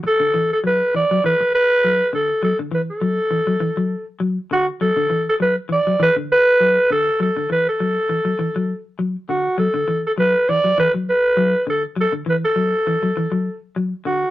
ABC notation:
X:1
M:4/4
L:1/16
Q:"Swing 16ths" 1/4=101
K:Bm
V:1 name="Alto saxophone"
A3 A B2 d2 B2 B4 A2 | A2 B A8 z3 F2 | A3 A B2 d2 B2 B4 A2 | A2 B A8 z3 F2 |
A3 A B2 d2 B2 B4 A2 | A2 B A8 z3 F2 |]
V:2 name="Clean electric guitar" clef=bass
z D, E,2 F,2 E, F, E, z3 F,2 D,2 | F, D, E,2 F,2 E, F, E, F,2 z F,2 D,2 | F, D, E,2 F,2 E, F, E, D,2 z F,2 D,2 | F, D, E,2 F,2 E, F, E, F,2 z F,2 D,2 |
F, D, E,2 F,2 E, F, E, F,2 z F,2 D,2 | F, D, E,2 F,2 E, F, E, F,2 z F,2 D,2 |]